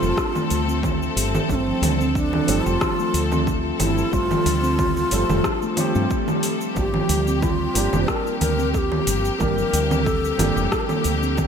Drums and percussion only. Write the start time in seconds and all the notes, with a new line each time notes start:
0.03 cabasa
0.17 kick, cross-stick, cabasa
0.35 low conga, cabasa
0.50 open hi-hat, cabasa
0.69 cabasa
0.83 kick, low conga, cabasa
1.02 cabasa
1.17 open hi-hat, cabasa
1.35 low conga, cabasa
1.49 kick, cabasa
1.83 open hi-hat, low conga, cabasa
2.01 cabasa
2.15 kick, cabasa
2.33 low conga
2.48 open hi-hat, cabasa
2.66 cabasa
2.81 kick, cross-stick, low conga, cabasa
2.99 cabasa
3.14 open hi-hat, cabasa
3.32 low conga, cabasa
3.47 kick, cabasa
3.80 open hi-hat, low conga, cabasa
3.98 cabasa
4.13 kick, cabasa
4.31 low conga, cabasa
4.46 open hi-hat, cabasa
4.64 cabasa
4.79 kick, low conga, cabasa
4.97 cabasa
5.11 open hi-hat, cabasa
5.29 low conga, cabasa
5.44 kick, cross-stick, cabasa
5.62 cabasa
5.77 open hi-hat, low conga, cabasa
5.95 cabasa
6.11 kick, cabasa
6.28 low conga, cabasa
6.43 open hi-hat, cabasa
6.61 cabasa
6.76 kick, cabasa
6.94 low conga
7.09 open hi-hat, cabasa
7.27 cabasa
7.42 kick, low conga, cabasa
7.75 open hi-hat, cabasa
7.93 low conga, cabasa
8.08 kick, cross-stick, cabasa
8.27 cabasa
8.41 open hi-hat, low conga, cabasa
8.59 cabasa
8.74 kick, cabasa
8.92 low conga
9.07 open hi-hat, cabasa
9.25 cabasa
9.40 kick, low conga, cabasa
9.58 cabasa
9.73 open hi-hat, cabasa
9.91 low conga, cabasa
10.06 kick, cabasa
10.25 cabasa
10.39 open hi-hat, low conga, cabasa
10.57 cabasa
10.72 kick, cross-stick, cabasa
10.89 low conga, cabasa
11.04 open hi-hat, cabasa
11.23 cabasa
11.37 kick, low conga, cabasa